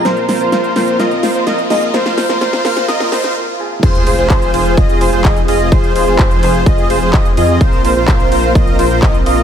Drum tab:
CC |----------------|----------------|x---------------|----------------|
RD |----------------|----------------|x-x-x-x-x-x-x-x-|x-x-x-x-x-x-x-x-|
HH |xxoxxxoxxxo-xxox|xxoxxxoxxxox----|xxoxxxoxxxoxxxox|xxoxxxoxxxoxxxox|
CP |----------------|----------------|----x-------x---|----x-x-----x---|
SD |o-o-o-o-o-o-o-o-|oooooooooooo----|----------------|----------------|
BD |----------------|----------------|o---o---o---o---|o---o---o---o---|

CC |----------------|
RD |x-x-x-x-x-x-x-x-|
HH |xxoxxxoxxxoxxxox|
CP |----x-------x---|
SD |----------------|
BD |o---o---o---o---|